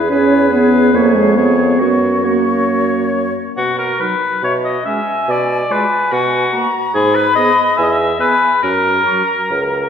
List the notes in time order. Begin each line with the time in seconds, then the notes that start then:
0.10 E2 C#4 G#4 B4 C#5
0.52 B3 G#4 B4 C#5
0.93 F2 A#3 G#4 C#5
1.14 G#3
1.36 B3 G#4 C#5
1.79 F#2 B3 F#4 C#5
2.24 A#3 F#4 C#5
3.57 B2 F#4
3.78 A#4
4.00 F#3 D#4 B4
4.43 B2 C#5 E5
4.65 D#5
4.85 G#3 C#4 E5 G#5
5.28 B2 D5
5.69 G#3 F4 B4 G#5
6.12 B2 F#4
6.53 A#3 F#4 A#5
6.94 G#2 G#4 B5
7.15 B4
7.35 B3 G#4 D#5
7.77 E2 E5 G#5
7.83 D#5
7.91 E5
8.19 B3 G#4 B4 G#5
8.63 F#2 A#4 A#5
9.06 F#3 F#4
9.51 C#2